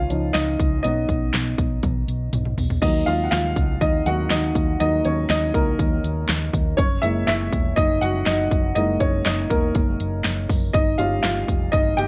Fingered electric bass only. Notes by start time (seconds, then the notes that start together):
0.10 C#2
0.35 C#2
0.60 C#2
0.84 B1
1.09 B1
1.34 B1
1.58 B1
1.83 B1
2.08 B1
2.33 B1
2.58 B1
2.82 D#2
3.07 D#2
3.32 D#2
3.56 C#2
3.81 D#2
4.06 D#2
4.31 D#2
4.55 D#2
4.80 D#2
5.05 D#2
5.29 D#2
5.54 C#2
5.79 D#2
6.04 D#2
6.29 D#2
6.53 D#2
6.78 F#1
7.03 F#1
7.28 F#1
7.53 E1
7.77 F#1
8.02 F#1
8.27 F#1
8.51 F#1
8.76 F#1
9.01 F#1
9.26 F#1
9.50 E1
9.75 F#1
10.00 F#1
10.25 F#1
10.49 F#1
10.74 G1
10.99 G1
11.24 G1
11.48 F1
11.73 G1
11.98 G1